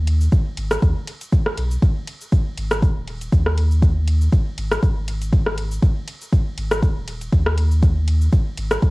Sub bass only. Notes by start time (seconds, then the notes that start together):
Already playing: D#2
0.32 G#1
0.57 G#1
0.82 D#2
1.57 B1
1.82 G#1
2.32 G#1
2.58 G#1
2.82 D#1
3.32 D#2
4.32 G#1
4.57 G#1
4.82 G#1
5.82 G#1
6.32 G#1
6.57 G#1
6.82 D#1
7.32 D#2
8.32 G#1
8.58 G#1
8.82 D#1